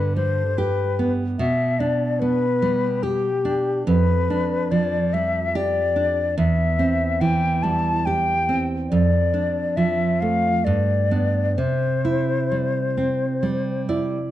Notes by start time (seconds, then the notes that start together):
Already playing: G2 D3 B4
0.16 G3 C5
0.58 G4 B4
0.99 B3
1.39 B2 E5
1.79 D4 D5
2.20 B3 B4
2.62 G3
3.03 G4
3.45 D4
3.87 F2 B4
4.30 D4
4.71 F3 D5
5.13 G3 E5
5.55 G4 D5
5.96 D4
6.38 E2 E5
6.79 C4
7.21 E3 G5
7.63 G3 A5
8.06 G4 G5
8.49 C4
8.90 F2 D5
9.34 D4
9.76 F3 E5
10.21 A3 F5
10.64 G2 D5
11.11 B3 D4
11.56 C3 C5
12.05 E4
12.52 G3
12.97 C4
13.43 G3
13.89 E4 D5